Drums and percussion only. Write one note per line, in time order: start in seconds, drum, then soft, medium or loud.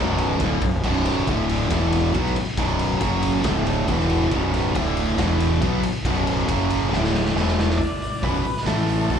0.18 ride medium
0.40 kick loud
0.40 ride medium
0.62 kick medium
0.62 ride medium
0.84 kick loud
0.84 crash loud
1.06 ride medium
1.27 kick loud
1.27 ride medium
1.49 ride medium
1.70 kick loud
1.70 snare loud
1.70 ride medium
1.93 ride medium
2.14 kick loud
2.14 ride medium
2.26 snare soft
2.36 ride medium
2.57 kick loud
2.57 ride loud
2.79 ride medium
3.01 kick loud
3.01 ride loud
3.23 ride medium
3.44 kick loud
3.44 snare loud
3.44 ride medium
3.67 ride medium
3.88 kick loud
3.88 ride medium
4.00 snare soft
4.10 ride medium
4.31 kick loud
4.31 ride medium
4.54 ride medium
4.75 kick loud
4.75 ride medium
4.97 ride medium
5.18 kick medium
5.18 snare loud
5.18 ride medium
5.40 ride medium
5.62 kick loud
5.62 ride medium
5.83 ride medium
6.05 kick loud
6.05 ride loud
6.27 ride medium
6.49 kick loud
6.49 ride loud
6.70 ride medium
6.93 snare medium
7.04 snare medium
7.15 snare medium
7.25 snare medium
7.37 snare medium
7.48 snare medium
7.59 snare loud
7.70 snare medium
7.80 kick loud
7.80 open hi-hat medium
8.02 open hi-hat medium
8.23 kick loud
8.23 open hi-hat medium
8.45 open hi-hat medium
8.57 snare soft
8.67 kick medium
8.67 snare loud
8.67 open hi-hat medium
8.89 open hi-hat medium
9.10 kick loud
9.10 open hi-hat medium